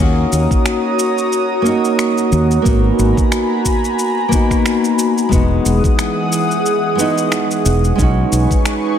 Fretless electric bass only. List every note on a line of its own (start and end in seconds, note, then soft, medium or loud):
0.00 0.24 D#2 medium
0.32 0.46 D#2 medium
2.32 2.57 D#2 medium
2.65 2.91 G#1 medium
2.99 3.12 G#1 medium
5.32 5.57 E1 medium
5.65 5.79 E1 medium
7.65 7.91 E1 medium
7.99 8.24 B1 loud
8.32 8.46 B1 medium